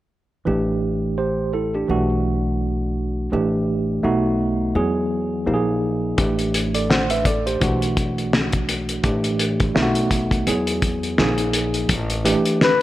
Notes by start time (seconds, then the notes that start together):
0.45 A1 E3 A3 D4 G4
1.18 G4 C5
1.54 E4 A4
1.75 D4 G4
1.88 B1 E3 A3 D4 F#4
3.32 A1 E3 A3 D4 G4
4.03 B1 A3 B3 D#4 F#4
4.75 E2 F#3 B3 E4 G#4
5.46 A#1 F3 A#3 D#4 G4
5.54 G#4
6.17 A1 E3 A3 D4 G4, kick, closed hi-hat
6.39 closed hi-hat
6.54 closed hi-hat
6.75 A4 D5, closed hi-hat
6.90 C5 F#5, snare
7.10 B4 E5, closed hi-hat
7.25 A4 D5, kick, closed hi-hat
7.46 G4 C5, closed hi-hat
7.60 B1 E3 A3 D4 F#4, kick, closed hi-hat
7.82 closed hi-hat
7.97 kick, closed hi-hat
8.18 closed hi-hat
8.33 snare
8.52 kick, closed hi-hat
8.69 closed hi-hat
8.89 closed hi-hat
9.04 A1 E3 A3 D4 G4, kick, closed hi-hat
9.24 closed hi-hat
9.39 closed hi-hat
9.60 kick, closed hi-hat
9.75 B1 A3 B3 D#4 F4, snare
9.82 F#4
9.95 closed hi-hat
10.11 kick, closed hi-hat
10.31 kick, closed hi-hat
10.47 E2 F#3 B3 E4 G#4, closed hi-hat
10.67 closed hi-hat
10.82 kick, closed hi-hat
11.03 closed hi-hat
11.18 A#1 F3 A#3 D#4 G#4, snare
11.38 closed hi-hat
11.53 closed hi-hat
11.74 closed hi-hat
11.89 A1, kick, closed hi-hat
12.10 closed hi-hat
12.24 E3 A3 D4 G4, closed hi-hat
12.45 closed hi-hat
12.61 B4, snare